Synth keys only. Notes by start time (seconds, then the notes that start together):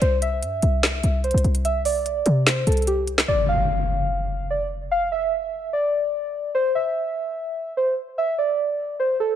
0.02 C5
0.22 E5
1.24 C5
1.65 E5
1.85 D5
2.47 C5
2.67 A4
2.87 G4
3.28 D5
3.49 F5
4.50 D5
4.91 F5
5.12 E5
5.73 D5
6.55 C5
6.75 E5
7.77 C5
8.18 E5
8.38 D5
9.00 C5
9.20 A4